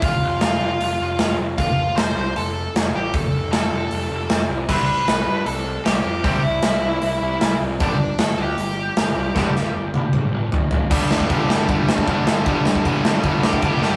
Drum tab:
CC |----------------|----------------|----------------|x---------------|
HH |o---o---o---o---|o---o---o---o---|o---o---o---o---|----o---o---o---|
SD |----o-------o---|----o-------o---|----o-------o---|----o-------o---|
T1 |----------------|----------------|----------------|----------------|
T2 |----------------|----------------|----------------|----------------|
FT |----------------|----------------|----------------|----------------|
BD |o---------------|o---------------|o---------------|o---------------|

CC |----------------|----------------|----------------|x---x---x---x---|
HH |o---o---o---o---|o---o---o---o---|----------------|----------------|
SD |----o-------o---|----o-------o---|o-o-------------|--o---o---o---o-|
T1 |----------------|----------------|------o---------|----------------|
T2 |----------------|----------------|--------o-------|----------------|
FT |----------------|----------------|------------o-o-|----------------|
BD |o---------------|o---------------|o---------------|o--oo---o--oo---|

CC |x---x---x---x---|
HH |----------------|
SD |--o---o---o---o-|
T1 |----------------|
T2 |----------------|
FT |----------------|
BD |o--oo---o--oo---|